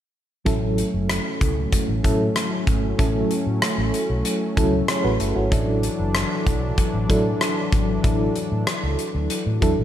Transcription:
0.45 0.82 A1 medium
0.45 1.38 F#3 medium
0.45 5.47 F#3 medium
0.45 5.47 A3 medium
0.45 1.39 C#4 medium
0.45 5.48 C#4 medium
0.45 1.39 E4 medium
0.45 1.39 A4 medium
0.45 kick medium
0.45 closed hi-hat medium
0.78 closed hi-hat medium
0.94 1.17 F#1 medium
1.10 cross-stick loud
1.10 closed hi-hat medium
1.41 1.65 C#2 medium
1.41 kick medium
1.41 closed hi-hat medium
1.72 kick medium
1.72 closed hi-hat medium
1.89 2.00 A1 medium
2.03 2.28 A2 medium
2.03 2.73 F#3 medium
2.03 2.73 C#4 medium
2.03 2.74 E4 medium
2.03 2.74 A4 medium
2.03 kick medium
2.03 closed hi-hat medium
2.36 cross-stick medium
2.36 closed hi-hat medium
2.67 2.91 G#1 medium
2.67 kick medium
2.67 closed hi-hat medium
2.98 3.23 A1 medium
2.98 3.91 F#3 medium
2.98 3.91 C#4 medium
2.98 3.91 E4 medium
2.98 3.92 A4 medium
2.98 kick loud
2.98 closed hi-hat medium
3.31 closed hi-hat medium
3.46 3.58 A2 medium
3.62 cross-stick loud
3.62 closed hi-hat medium
3.78 3.90 A1 medium
3.94 closed hi-hat medium
4.10 4.21 B1 medium
4.25 closed hi-hat medium
4.56 4.81 C#2 medium
4.56 5.26 F#3 medium
4.56 4.88 C#4 medium
4.56 4.88 E4 medium
4.56 4.89 A4 medium
4.56 kick medium
4.56 closed hi-hat medium
4.88 5.04 G#4 soft
4.88 5.03 C#5 medium
4.88 cross-stick loud
4.88 closed hi-hat medium
5.04 5.16 A1 medium
5.04 5.19 F#4 medium
5.04 5.19 B4 medium
5.20 5.32 G1 medium
5.20 5.35 E4 medium
5.20 5.35 A4 medium
5.20 closed hi-hat medium
5.36 5.48 G#1 medium
5.36 5.66 C#4 soft
5.36 5.66 F#4 medium
5.51 5.87 A1 medium
5.51 9.84 E3 medium
5.51 6.44 F#3 medium
5.51 9.84 F#3 medium
5.51 9.84 D4 medium
5.51 6.44 D4 medium
5.51 6.44 E4 medium
5.51 6.44 A4 medium
5.51 kick loud
5.51 closed hi-hat medium
5.83 closed hi-hat medium
5.99 6.23 F#1 medium
6.15 cross-stick loud
6.15 closed hi-hat medium
6.47 6.70 B1 medium
6.47 kick medium
6.47 closed hi-hat medium
6.78 kick medium
6.78 closed hi-hat medium
6.94 7.06 A1 medium
7.09 7.33 A2 medium
7.09 7.79 F#3 medium
7.09 7.79 D4 medium
7.09 7.79 E4 medium
7.09 7.79 A4 medium
7.09 kick medium
7.09 closed hi-hat medium
7.41 cross-stick medium
7.41 closed hi-hat medium
7.72 7.96 G#1 medium
7.72 kick medium
7.72 closed hi-hat medium
8.03 8.28 A1 medium
8.03 8.96 F#3 medium
8.03 8.96 D4 medium
8.03 8.97 E4 medium
8.03 8.97 A4 medium
8.03 kick loud
8.03 closed hi-hat medium
8.36 closed hi-hat medium
8.52 8.63 A2 medium
8.67 cross-stick loud
8.67 closed hi-hat medium
8.83 8.95 C#2 medium
8.99 closed hi-hat medium
9.15 9.26 D2 medium
9.30 closed hi-hat medium
9.46 9.58 A2 medium
9.61 9.74 E2 medium
9.61 9.84 F#3 medium
9.61 9.84 D4 medium
9.61 9.84 E4 medium
9.61 9.84 A4 medium
9.61 kick medium
9.61 closed hi-hat medium
9.78 9.84 A1 medium

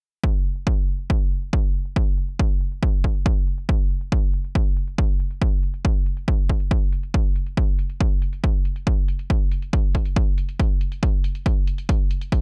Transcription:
0.24 kick loud
0.45 closed hi-hat medium
0.56 closed hi-hat medium
0.67 kick loud
0.88 closed hi-hat medium
0.99 closed hi-hat medium
1.10 kick loud
1.31 closed hi-hat medium
1.42 closed hi-hat soft
1.53 kick loud
1.75 closed hi-hat medium
1.85 closed hi-hat medium
1.96 kick loud
2.18 closed hi-hat medium
2.29 closed hi-hat soft
2.39 kick loud
2.61 closed hi-hat medium
2.72 closed hi-hat soft
2.83 kick loud
3.04 kick medium
3.15 closed hi-hat soft
3.26 kick loud
3.47 closed hi-hat medium
3.58 closed hi-hat medium
3.69 kick loud
3.90 closed hi-hat medium
4.01 closed hi-hat soft
4.12 kick loud
4.34 closed hi-hat medium
4.44 closed hi-hat soft
4.55 kick loud
4.77 closed hi-hat medium
4.88 closed hi-hat soft
4.98 kick loud
5.20 closed hi-hat medium
5.31 closed hi-hat medium
5.42 kick loud
5.63 closed hi-hat medium
5.74 closed hi-hat soft
5.85 kick loud
6.06 closed hi-hat medium
6.17 closed hi-hat soft
6.28 kick loud
6.50 kick medium
6.60 closed hi-hat soft
6.71 kick loud
6.92 closed hi-hat medium
7.03 closed hi-hat soft
7.14 kick loud
7.36 closed hi-hat medium
7.46 closed hi-hat soft
7.57 kick loud
7.79 closed hi-hat medium
7.90 closed hi-hat soft
8.01 kick loud
8.22 closed hi-hat medium
8.33 closed hi-hat soft
8.44 kick loud
8.44 closed hi-hat medium
8.65 closed hi-hat medium
8.76 closed hi-hat soft
8.87 kick loud
9.08 closed hi-hat medium
9.19 closed hi-hat medium
9.30 kick loud
9.30 closed hi-hat medium
9.52 closed hi-hat medium
9.62 closed hi-hat soft
9.73 kick loud
9.73 closed hi-hat medium
9.95 kick medium
9.95 closed hi-hat medium
10.05 closed hi-hat soft
10.16 kick loud
10.16 closed hi-hat medium
10.38 closed hi-hat medium
10.49 closed hi-hat medium
10.59 kick loud
10.59 closed hi-hat medium
10.81 closed hi-hat medium
10.92 closed hi-hat medium
11.03 kick loud
11.03 closed hi-hat medium
11.24 closed hi-hat medium
11.35 closed hi-hat medium
11.46 kick loud
11.46 closed hi-hat medium
11.67 closed hi-hat medium
11.78 closed hi-hat medium
11.89 kick loud
11.89 closed hi-hat medium
12.11 closed hi-hat medium
12.21 closed hi-hat medium
12.32 kick loud
12.32 closed hi-hat medium

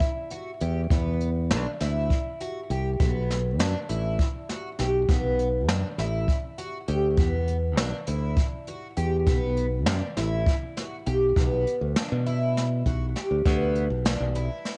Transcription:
0.00 kick loud
0.00 closed hi-hat medium
0.30 0.50 F#4 medium
0.30 closed hi-hat medium
0.60 0.89 E2 medium
0.60 0.80 G4 medium
0.60 closed hi-hat medium
0.90 1.53 E2 medium
0.90 1.29 B3 medium
0.90 kick loud
0.90 closed hi-hat medium
1.20 closed hi-hat medium
1.51 1.65 B1 medium
1.51 1.70 D4 medium
1.51 snare loud
1.51 closed hi-hat medium
1.80 2.08 D2 medium
1.80 2.19 E4 medium
1.80 snare soft
1.80 closed hi-hat medium
2.10 kick medium
2.10 closed hi-hat medium
2.40 2.60 F#4 medium
2.40 closed hi-hat medium
2.70 2.98 C2 medium
2.70 2.90 G4 medium
2.70 closed hi-hat medium
3.00 3.60 B1 medium
3.00 3.38 B3 medium
3.00 kick loud
3.00 closed hi-hat medium
3.30 snare soft
3.30 closed hi-hat medium
3.60 3.73 F#2 loud
3.60 3.79 D4 medium
3.60 snare loud
3.60 closed hi-hat medium
3.89 4.17 A1 medium
3.89 4.27 E4 medium
3.89 closed hi-hat medium
4.19 kick medium
4.19 closed hi-hat medium
4.49 4.69 F#4 medium
4.49 snare soft
4.49 closed hi-hat medium
4.79 5.07 B1 medium
4.79 4.98 G4 medium
4.79 snare soft
4.79 closed hi-hat medium
5.09 5.68 B1 medium
5.09 5.47 B3 medium
5.09 kick loud
5.09 closed hi-hat medium
5.39 closed hi-hat medium
5.68 5.82 F#2 loud
5.68 5.88 D4 medium
5.68 snare loud
5.68 closed hi-hat medium
5.98 6.26 A1 medium
5.98 6.37 E4 medium
5.98 snare soft
5.98 closed hi-hat medium
6.28 kick medium
6.28 closed hi-hat medium
6.58 6.77 F#4 medium
6.58 closed hi-hat medium
6.88 7.16 D2 medium
6.88 7.07 G4 medium
6.88 closed hi-hat medium
7.17 7.77 E2 loud
7.17 7.56 B3 medium
7.17 kick loud
7.17 closed hi-hat medium
7.48 closed hi-hat medium
7.77 7.91 B1 loud
7.77 7.97 D4 medium
7.77 snare loud
7.77 closed hi-hat medium
8.07 8.35 D2 medium
8.07 8.46 E4 medium
8.07 closed hi-hat medium
8.36 kick loud
8.36 closed hi-hat medium
8.67 8.87 F#4 medium
8.67 closed hi-hat medium
8.97 9.25 E2 medium
8.97 9.16 G4 medium
8.97 closed hi-hat medium
9.27 9.87 B1 loud
9.27 9.65 B3 medium
9.27 kick loud
9.27 closed hi-hat medium
9.57 closed hi-hat medium
9.86 10.01 F#2 loud
9.86 10.06 D4 medium
9.86 snare loud
9.86 closed hi-hat medium
10.17 10.45 A1 loud
10.17 10.55 E4 medium
10.17 snare soft
10.17 closed hi-hat medium
10.46 kick loud
10.46 closed hi-hat medium
10.77 10.96 F#4 medium
10.77 snare soft
10.77 closed hi-hat medium
11.06 11.34 B1 medium
11.06 11.25 G4 medium
11.06 closed hi-hat medium
11.36 11.64 B1 medium
11.36 11.75 B3 medium
11.36 kick loud
11.36 closed hi-hat medium
11.67 closed hi-hat medium
11.81 11.95 D2 medium
11.96 12.15 D4 medium
11.96 snare loud
11.96 closed hi-hat medium
12.12 12.82 B2 medium
12.26 12.64 E4 medium
12.26 closed hi-hat medium
12.57 snare soft
12.57 closed hi-hat medium
12.86 13.13 B1 medium
12.86 13.05 F#4 medium
12.86 kick medium
12.86 closed hi-hat medium
13.16 13.35 G4 medium
13.16 snare soft
13.16 closed hi-hat medium
13.31 13.44 D2 medium
13.46 13.87 D2 medium
13.46 13.84 B3 medium
13.46 kick loud
13.46 closed hi-hat medium
13.75 closed hi-hat medium
13.90 14.18 B1 medium
14.05 14.24 D4 medium
14.05 snare loud
14.05 closed hi-hat medium
14.20 14.48 B1 medium
14.35 14.73 E4 medium
14.35 closed hi-hat medium
14.65 snare soft
14.65 closed hi-hat medium

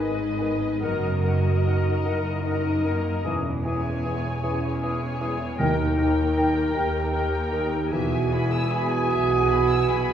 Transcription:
0.00 0.67 G#1 soft
0.00 0.67 G#2 soft
0.00 0.85 G#2 soft
0.00 0.14 D#3 soft
0.00 0.39 B3 soft
0.00 0.82 D#4 medium
0.00 1.65 D#4 soft
0.00 0.80 G#4 soft
0.00 0.85 G#4 soft
0.00 0.14 B4 soft
0.00 0.80 B4 soft
0.00 0.80 D#5 soft
0.38 0.56 D#3 soft
0.38 0.85 B3 soft
0.38 0.57 B4 soft
0.38 0.48 G#5 soft
0.80 1.92 F#1 soft
0.80 1.91 F#2 medium
0.80 3.28 F#2 soft
0.80 0.97 D#3 soft
0.80 2.04 F#4 medium
0.80 1.22 A#4 soft
0.80 0.98 A#4 soft
0.80 1.23 A#4 soft
0.80 1.23 D#5 soft
0.80 0.90 F#5 soft
1.22 1.40 D#3 soft
1.22 2.84 A#3 soft
1.22 1.39 A#4 soft
1.22 2.42 A#4 soft
1.22 2.43 A#4 soft
1.22 2.43 D#5 soft
1.22 1.32 F#5 soft
1.64 1.82 D#3 soft
1.64 2.44 D#4 soft
1.64 1.82 A#4 soft
1.64 1.73 F#5 soft
2.05 3.11 F#1 soft
2.05 3.10 F#2 soft
2.05 2.21 D#3 soft
2.05 2.46 E4 medium
2.05 3.28 A#4 soft
2.05 2.23 A#4 soft
2.05 2.14 F#5 soft
2.44 2.61 D#3 soft
2.44 3.28 D#4 soft
2.44 2.86 D#4 medium
2.44 3.23 A#4 soft
2.44 2.62 A#4 soft
2.44 3.24 D#5 soft
2.44 2.53 F#5 soft
2.84 3.01 D#3 soft
2.84 3.28 A#3 soft
2.84 3.25 A#3 medium
2.84 3.02 A#4 soft
2.84 2.93 F#5 soft
3.24 4.29 E1 medium
3.24 4.29 E2 medium
3.24 3.42 E3 soft
3.24 5.63 E3 soft
3.24 3.63 C#4 medium
3.24 3.40 G#4 soft
3.24 3.33 G#5 soft
3.64 3.81 E3 soft
3.64 5.20 G#3 soft
3.64 4.03 C#4 medium
3.64 4.79 G#4 soft
3.64 3.81 G#4 soft
3.64 4.80 C#5 soft
3.64 3.72 G#5 soft
3.64 4.79 G#5 soft
4.03 4.22 E3 soft
4.03 4.42 B3 medium
4.03 4.19 G#4 soft
4.03 4.81 G#4 soft
4.03 4.12 G#5 soft
4.42 5.46 E1 medium
4.42 5.45 E2 medium
4.42 4.60 E3 soft
4.42 5.42 C#4 medium
4.42 4.59 G#4 soft
4.42 5.63 C#5 soft
4.42 4.51 G#5 soft
4.80 4.99 E3 soft
4.80 4.97 G#4 soft
4.80 5.62 G#4 soft
4.80 5.58 G#4 soft
4.80 5.58 C#5 soft
4.80 4.89 G#5 soft
4.80 5.58 G#5 soft
5.20 5.37 E3 soft
5.20 5.63 G#3 soft
5.20 5.36 G#4 soft
5.20 5.29 G#5 soft
5.57 6.61 D#2 medium
5.57 6.62 D#2 medium
5.57 6.71 D#3 medium
5.57 7.96 D#3 soft
5.57 5.76 D#3 soft
5.57 6.73 D#4 medium
5.57 5.74 A#4 soft
5.57 5.97 A#4 soft
5.57 5.96 G5 soft
5.57 5.68 G5 soft
5.96 6.15 D#3 soft
5.96 7.52 D#4 soft
5.96 7.11 A#4 soft
5.96 6.14 A#4 soft
5.96 7.11 A#4 soft
5.96 6.05 G5 soft
5.96 7.11 G5 soft
6.36 6.53 D#3 soft
6.36 6.52 A#4 soft
6.36 7.13 A#4 soft
6.36 6.45 G5 soft
6.74 7.78 D#2 medium
6.74 7.79 D#2 medium
6.74 6.90 D#3 soft
6.74 7.51 G4 medium
6.74 7.96 G4 soft
6.74 6.91 A#4 soft
6.74 6.83 G5 soft
7.12 7.28 D#3 soft
7.12 7.91 A#4 soft
7.12 7.29 A#4 soft
7.12 7.96 A#4 soft
7.12 7.22 G5 soft
7.12 7.91 G5 soft
7.51 7.68 D#3 soft
7.51 7.96 D#4 soft
7.51 7.91 G4 medium
7.51 7.69 A#4 soft
7.51 7.60 G5 soft
7.91 8.91 E1 medium
7.91 8.90 E2 medium
7.91 10.13 E3 medium
7.91 8.32 F#4 medium
7.91 10.13 G#4 medium
7.91 8.11 E5 medium
7.91 10.13 G#5 medium
8.12 8.32 G#5 soft
8.32 9.08 B3 soft
8.32 8.71 E4 medium
8.32 8.52 B5 soft
8.51 8.71 E6 soft
8.70 10.13 F#4 medium
8.70 9.47 G#4 soft
8.70 8.90 B5 soft
8.90 9.09 G#5 medium
9.09 10.08 B1 medium
9.09 10.08 B2 medium
9.09 9.87 B3 soft
9.09 9.29 E5 medium
9.29 9.49 G#5 medium
9.49 10.13 G#4 soft
9.49 9.68 B5 medium
9.69 9.88 E6 soft
9.88 10.13 B3 soft
9.88 10.09 B5 medium
10.09 10.13 G#5 medium

